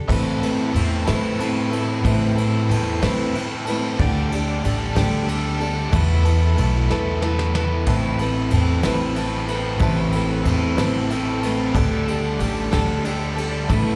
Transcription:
Already playing: steel-string acoustic guitar D4 G4
0.08 upright bass A2, steel-string acoustic guitar A2 E3 A3 C4 E4 B4, tonewheel organ A4 B5, grand piano A4 B4 C5 E5, overdriven electric guitar A4, kick, crash
0.40 overdriven electric guitar A4, steel-string acoustic guitar B4, ride
0.44 steel-string acoustic guitar A3 C4 E4
0.72 upright bass E2, overdriven electric guitar E3 A4, steel-string acoustic guitar A3 C4 E4 B4, ride
1.05 upright bass A2, steel-string acoustic guitar E3 A3 C4 E4 B4, overdriven electric guitar A4, grand piano A4 B4 C5 E5, snare, ride
1.09 steel-string acoustic guitar A2
1.37 overdriven electric guitar E3 A4, steel-string acoustic guitar A3 C4 E4, ride
1.41 steel-string acoustic guitar B4
1.70 steel-string acoustic guitar A3 C4 E4 B4, overdriven electric guitar A4, ride
2.05 steel-string acoustic guitar A2 E3 A3 C4 E4 B4, upright bass A2, grand piano A4 B4 C5 E5, overdriven electric guitar A4, kick, ride
2.36 steel-string acoustic guitar A3 C4 E4 B4, overdriven electric guitar A4, ride
2.69 upright bass E2, overdriven electric guitar E3 A4, steel-string acoustic guitar A3 C4 E4 B4, ride
3.00 upright bass A2, steel-string acoustic guitar A2 E3 A3 C4 E4 B4, overdriven electric guitar A4, grand piano A4 B4 C5 E5, snare, ride
3.33 overdriven electric guitar E3 A4, steel-string acoustic guitar A3 C4, ride
3.38 steel-string acoustic guitar E4 B4
3.65 overdriven electric guitar A4, steel-string acoustic guitar B4, ride
3.69 steel-string acoustic guitar A3 C4 E4
3.99 upright bass D2, steel-string acoustic guitar D3 G3 D4 G4 A4, grand piano G4 A4 D5 G5, tonewheel organ G4 D5 A5, kick, crash
4.32 overdriven electric guitar G3, steel-string acoustic guitar D4 G4 A4, ride
4.62 upright bass A1, overdriven electric guitar D3, steel-string acoustic guitar G3 D4 G4 A4, ride
4.95 upright bass D2, steel-string acoustic guitar D3 G3 D4 G4 A4, grand piano G4 A4 D5 G5, snare, ride
5.26 overdriven electric guitar D3, steel-string acoustic guitar G3 D4 G4 A4, ride
5.60 overdriven electric guitar G3, steel-string acoustic guitar D4 G4 A4, ride
5.91 upright bass E2, steel-string acoustic guitar E3 A3 E4 A4 B4, overdriven electric guitar B3, tonewheel organ A4 E5 B5, grand piano A4 B4 E5 A5, kick, ride
6.24 steel-string acoustic guitar E4 A4 B4, ride
6.28 overdriven electric guitar B3
6.56 upright bass B1, overdriven electric guitar E3 B3, steel-string acoustic guitar A3 E4 A4 B4, ride
6.90 upright bass E2, steel-string acoustic guitar E3 A3 E4 A4 B4, overdriven electric guitar B3, grand piano A4 B4 E5 A5, snare
7.21 overdriven electric guitar E3 B3, steel-string acoustic guitar A3 E4 A4, snare
7.26 steel-string acoustic guitar B4
7.39 snare
7.55 overdriven electric guitar B3, steel-string acoustic guitar E4 A4 B4, snare
7.86 upright bass A1, steel-string acoustic guitar A2 E3 A3 C4, tonewheel organ C4, overdriven electric guitar E4, grand piano B4 C5 E5 A5, kick, crash
7.90 steel-string acoustic guitar A4 B4
8.19 steel-string acoustic guitar A3 C4 A4 B4, overdriven electric guitar E4, ride
8.50 upright bass E2, overdriven electric guitar E3 E4, steel-string acoustic guitar A3 C4, ride
8.55 steel-string acoustic guitar A4 B4
8.83 upright bass A1, steel-string acoustic guitar A2 E3 A3 C4 A4 B4, overdriven electric guitar E4, grand piano B4 C5 E5 A5, snare, ride
9.14 overdriven electric guitar E3 E4, steel-string acoustic guitar A3 C4 A4, ride
9.18 steel-string acoustic guitar B4
9.48 steel-string acoustic guitar A3 C4 A4 B4, overdriven electric guitar E4, ride
9.79 upright bass A1, steel-string acoustic guitar A2 E3 A3 C4 A4, overdriven electric guitar E4, grand piano B4 C5 E5 A5, kick, ride
9.84 steel-string acoustic guitar B4
10.11 overdriven electric guitar E4 A4, ride
10.15 steel-string acoustic guitar A3 C4 A4 B4
10.43 upright bass E2, overdriven electric guitar E3 C4 E4, ride
10.47 steel-string acoustic guitar A3 C4 A4 B4
10.76 upright bass A1, overdriven electric guitar E4, steel-string acoustic guitar A4 B4, grand piano B4 C5 E5 A5, snare, ride
10.81 steel-string acoustic guitar A2 E3 A3 C4
11.08 overdriven electric guitar E3 E4, ride
11.12 steel-string acoustic guitar A3 C4 A4 B4
11.41 overdriven electric guitar E4 A4, steel-string acoustic guitar B4, ride
11.45 steel-string acoustic guitar A3 C4 A4
11.74 upright bass D2, steel-string acoustic guitar D3 G3 D4 G4 A4, tonewheel organ G4 D5 A5, grand piano A4 D5 G5 A5, kick, crash
12.08 overdriven electric guitar G3, steel-string acoustic guitar D4 G4 A4, ride
12.39 upright bass A1, overdriven electric guitar D3, steel-string acoustic guitar G3 D4 G4 A4, ride
12.71 upright bass D2, steel-string acoustic guitar D3 G3 D4 G4 A4, grand piano A4 D5 G5 A5, snare, ride
13.03 overdriven electric guitar D3, steel-string acoustic guitar G3 D4 G4 A4, ride
13.37 steel-string acoustic guitar D4 G4 A4, ride
13.41 overdriven electric guitar G3
13.67 upright bass A1, steel-string acoustic guitar A2 E3 A3 E4 A4, tonewheel organ A4 E5 B5, grand piano A4 B4 E5 A5, kick, ride
13.71 overdriven electric guitar B3, steel-string acoustic guitar B4

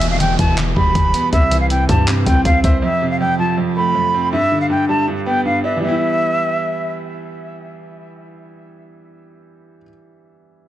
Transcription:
Already playing: 808-style bass E1, grand piano E2, downlifter
0.01 grand piano B2, closed hi-hat
0.11 flute F5
0.20 grand piano E2, flute G5, closed hi-hat
0.39 808-style bass E1, grand piano E3, flute A5, kick, closed hi-hat
0.58 grand piano E2, clap, closed hi-hat
0.76 808-style bass E1, grand piano G3, flute B5, kick
0.95 808-style bass E1, grand piano E2, kick, closed hi-hat
1.14 grand piano B3, closed hi-hat
1.32 808-style bass C2, grand piano C3, flute E5, kick, closed hi-hat
1.51 grand piano E3, closed hi-hat
1.61 flute F5
1.70 grand piano C3, flute G5, closed hi-hat
1.89 808-style bass G2, grand piano G3, flute A5, kick, closed hi-hat
2.08 grand piano C3, clap, closed hi-hat
2.26 808-style bass C2, grand piano C4, flute G5, kick, closed hi-hat
2.45 808-style bass C2, grand piano C3, flute F5, kick, closed hi-hat
2.64 808-style bass C2, grand piano C5, flute E5, kick, closed hi-hat
2.82 grand piano F2, flute E5
3.01 grand piano C3
3.11 flute F5
3.20 grand piano F2, flute G5
3.39 grand piano F3, flute A5
3.57 grand piano F2
3.76 grand piano A3, flute B5
3.95 grand piano F2
4.14 grand piano C4
4.32 grand piano G2, flute E5
4.52 grand piano D3
4.61 flute F5
4.70 grand piano G2, flute G5
4.89 grand piano G3, flute A5
5.08 grand piano G2
5.26 grand piano B3, flute G5
5.45 grand piano G2, flute F5
5.64 grand piano D4, flute E5
5.77 grand piano E3 G3
5.83 grand piano B3, flute E5
5.89 grand piano E4

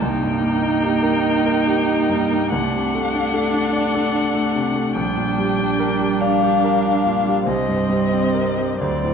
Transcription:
0.00 grand piano C2, cello A#3, viola D#4, violin G5
0.23 grand piano G2
0.42 grand piano A#3
0.62 grand piano D#4
0.83 grand piano G4
1.03 grand piano A#4
1.23 grand piano D#5
1.45 grand piano A#4
1.67 grand piano G4
1.88 grand piano D#4
2.09 grand piano G2
2.31 grand piano A#3
2.50 grand piano C2, cello A3, viola D4, violin F#5
2.74 grand piano C3
2.95 grand piano A3
3.15 grand piano D4
3.34 grand piano A4
3.54 grand piano D4
3.73 grand piano D5
3.95 grand piano A4
4.15 grand piano D4
4.35 grand piano A3
4.55 grand piano C3
4.75 grand piano A3
4.95 grand piano A#1, cello G3, viola D4, violin G5
5.17 grand piano A#2
5.38 grand piano G3
5.59 grand piano D4
5.80 grand piano A#4
6.00 grand piano G4
6.20 grand piano D5, violin F5
6.43 grand piano G4
6.64 grand piano A#4
6.85 grand piano D4
7.06 grand piano A#2
7.26 grand piano G3
7.46 grand piano C2, cello G3, viola C4, violin D#5
7.69 grand piano G2
7.89 grand piano G3
8.13 grand piano C4
8.34 grand piano A#4
8.57 grand piano G4
8.80 grand piano D2, cello F#3, viola C4, violin D5
9.04 grand piano A2

